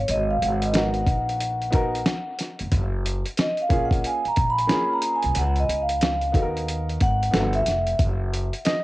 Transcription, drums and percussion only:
0.08 closed hi-hat
0.42 closed hi-hat
0.62 closed hi-hat
0.74 snare, closed hi-hat
0.94 closed hi-hat
1.07 kick, closed hi-hat
1.29 closed hi-hat
1.41 closed hi-hat
1.62 closed hi-hat
1.72 kick, closed hi-hat
1.95 closed hi-hat
2.06 snare, closed hi-hat
2.39 snare, closed hi-hat
2.59 closed hi-hat
2.72 kick, closed hi-hat
3.06 closed hi-hat
3.25 closed hi-hat
3.37 snare, closed hi-hat
3.57 closed hi-hat
3.70 kick, closed hi-hat
3.91 kick, closed hi-hat
4.04 closed hi-hat
4.25 closed hi-hat
4.36 kick, closed hi-hat
4.58 closed hi-hat
4.69 snare, closed hi-hat
5.02 closed hi-hat
5.23 closed hi-hat
5.35 closed hi-hat
5.56 closed hi-hat
5.69 closed hi-hat
5.89 closed hi-hat
6.01 snare, closed hi-hat
6.21 closed hi-hat
6.34 kick, closed hi-hat
6.57 closed hi-hat
6.68 closed hi-hat
6.89 closed hi-hat
7.00 kick, closed hi-hat
7.23 closed hi-hat
7.34 snare, closed hi-hat
7.53 closed hi-hat
7.66 snare, closed hi-hat
7.87 closed hi-hat
7.99 kick, closed hi-hat
8.34 closed hi-hat
8.53 closed hi-hat
8.65 snare, closed hi-hat

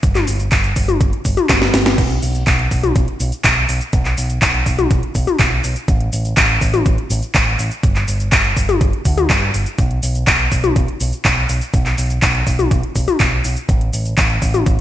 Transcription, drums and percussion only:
0.03 kick, closed hi-hat, cabasa
0.15 clap, closed hi-hat, high tom, cabasa
0.27 open hi-hat, cabasa
0.40 closed hi-hat, cabasa
0.52 kick, clap, closed hi-hat, cabasa
0.64 closed hi-hat, cabasa
0.76 kick, open hi-hat, cabasa
0.88 closed hi-hat, high tom, cabasa
1.01 kick, closed hi-hat, cabasa
1.13 closed hi-hat
1.25 kick, open hi-hat, cabasa
1.37 closed hi-hat, high tom, cabasa
1.49 kick, snare, clap, closed hi-hat, cabasa
1.62 snare, cabasa
1.74 snare, open hi-hat, cabasa
1.86 snare, closed hi-hat, cabasa
1.98 kick, closed hi-hat, crash, cabasa
2.10 closed hi-hat
2.23 open hi-hat, cabasa
2.35 closed hi-hat, cabasa
2.47 kick, clap, closed hi-hat, cabasa
2.59 closed hi-hat
2.71 kick, open hi-hat, cabasa
2.84 closed hi-hat, high tom, cabasa
2.96 kick, closed hi-hat, cabasa
3.08 closed hi-hat
3.20 open hi-hat, cabasa
3.32 closed hi-hat, cabasa
3.44 kick, clap, closed hi-hat, cabasa
3.69 open hi-hat, cabasa
3.81 closed hi-hat, cabasa
3.93 kick, closed hi-hat, cabasa
4.05 clap, closed hi-hat
4.18 open hi-hat, cabasa
4.30 closed hi-hat, cabasa
4.42 kick, clap, closed hi-hat, cabasa
4.54 closed hi-hat
4.66 kick, open hi-hat, cabasa
4.79 closed hi-hat, high tom, cabasa
4.91 kick, closed hi-hat, cabasa
5.03 closed hi-hat
5.15 kick, open hi-hat, cabasa
5.27 closed hi-hat, high tom, cabasa
5.39 kick, clap, closed hi-hat, cabasa
5.64 open hi-hat, cabasa
5.76 closed hi-hat, cabasa
5.88 kick, closed hi-hat, cabasa
6.00 closed hi-hat
6.13 open hi-hat, cabasa
6.25 closed hi-hat, cabasa
6.37 kick, clap, closed hi-hat, cabasa
6.49 closed hi-hat
6.61 kick, open hi-hat, cabasa
6.74 closed hi-hat, high tom, cabasa
6.86 kick, closed hi-hat, cabasa
6.98 closed hi-hat
7.10 open hi-hat, cabasa
7.22 closed hi-hat, cabasa
7.35 kick, clap, closed hi-hat, cabasa
7.59 open hi-hat, cabasa
7.71 closed hi-hat, cabasa
7.83 kick, closed hi-hat, cabasa
7.96 clap, closed hi-hat
8.08 open hi-hat, cabasa
8.20 closed hi-hat, cabasa
8.32 kick, clap, closed hi-hat, cabasa
8.44 closed hi-hat
8.57 kick, open hi-hat, cabasa
8.69 closed hi-hat, high tom, cabasa
8.81 kick, closed hi-hat, cabasa
8.93 closed hi-hat
9.05 kick, open hi-hat, cabasa
9.18 closed hi-hat, high tom, cabasa
9.30 kick, clap, closed hi-hat, cabasa
9.54 open hi-hat, cabasa
9.66 closed hi-hat, cabasa
9.78 kick, closed hi-hat, cabasa
9.91 closed hi-hat
10.03 open hi-hat, cabasa
10.15 closed hi-hat, cabasa
10.27 kick, clap, closed hi-hat, cabasa
10.39 closed hi-hat
10.52 kick, open hi-hat, cabasa
10.64 closed hi-hat, high tom, cabasa
10.76 kick, closed hi-hat, cabasa
10.88 closed hi-hat
11.00 open hi-hat, cabasa
11.13 closed hi-hat, cabasa
11.25 kick, clap, closed hi-hat, cabasa
11.49 open hi-hat, cabasa
11.61 closed hi-hat, cabasa
11.74 kick, closed hi-hat, cabasa
11.86 clap, closed hi-hat
11.98 open hi-hat, cabasa
12.10 closed hi-hat, cabasa
12.22 kick, clap, closed hi-hat, cabasa
12.35 closed hi-hat
12.47 kick, open hi-hat, cabasa
12.59 closed hi-hat, high tom, cabasa
12.71 kick, closed hi-hat, cabasa
12.83 closed hi-hat
12.96 kick, open hi-hat, cabasa
13.08 closed hi-hat, high tom, cabasa
13.20 kick, clap, closed hi-hat, cabasa
13.44 open hi-hat, cabasa
13.57 closed hi-hat, cabasa
13.69 kick, closed hi-hat, cabasa
13.81 closed hi-hat
13.93 open hi-hat, cabasa
14.05 closed hi-hat, cabasa
14.18 kick, clap, closed hi-hat, cabasa
14.30 closed hi-hat
14.42 kick, open hi-hat, cabasa
14.54 closed hi-hat, high tom, cabasa
14.66 kick, closed hi-hat, cabasa

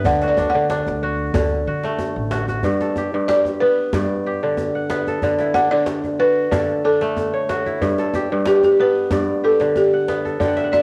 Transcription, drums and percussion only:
0.04 djembe bass
0.22 djembe slap
0.37 djembe tone
0.70 djembe slap
0.87 djembe slap, djembe tone
1.34 djembe slap, djembe tone, djembe bass
1.83 djembe slap
1.99 djembe tone
2.31 djembe slap
2.48 djembe slap, djembe tone
2.63 djembe slap, djembe bass
2.81 djembe slap
2.96 djembe slap, djembe tone
3.29 djembe slap
3.45 djembe tone
3.93 djembe slap, djembe tone, djembe bass
4.10 djembe slap
4.57 djembe tone
4.90 djembe slap
5.07 djembe tone
5.22 djembe slap, djembe bass
5.39 djembe slap
5.54 djembe slap, djembe tone
5.86 djembe slap
6.04 djembe tone
6.52 djembe slap, djembe tone, djembe bass
6.69 djembe slap
7.01 djembe slap
7.17 djembe tone
7.49 djembe slap
7.66 djembe tone
7.81 djembe slap, djembe bass
7.98 djembe slap
8.14 djembe slap, djembe tone
8.45 djembe slap
8.62 djembe tone
9.11 djembe slap, djembe tone, djembe bass
9.28 djembe slap
9.60 djembe slap
9.76 djembe tone
10.08 djembe slap
10.25 djembe tone
10.41 djembe slap, djembe bass
10.57 djembe slap
10.73 djembe slap, djembe tone

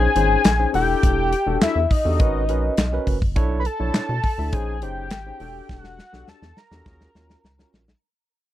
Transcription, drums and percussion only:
0.16 closed hi-hat
0.44 snare, clap, closed hi-hat
0.74 open hi-hat
1.03 kick, closed hi-hat
1.33 closed hi-hat
1.61 snare, clap, closed hi-hat
1.91 kick, open hi-hat
2.20 kick, closed hi-hat
2.49 closed hi-hat
2.77 snare, clap, closed hi-hat
3.07 kick, open hi-hat
3.22 kick
3.36 kick, closed hi-hat
3.65 closed hi-hat
3.94 snare, clap, closed hi-hat
4.23 kick, open hi-hat
4.53 kick, closed hi-hat
4.82 closed hi-hat
5.11 snare, clap, closed hi-hat
5.40 open hi-hat
5.69 kick, snare
5.84 snare
5.99 snare
6.13 snare
6.28 snare
6.42 snare
6.57 snare
6.72 snare
6.86 kick, snare
7.01 snare
7.15 snare
7.30 snare
7.45 snare
7.59 snare
7.74 snare
7.88 snare

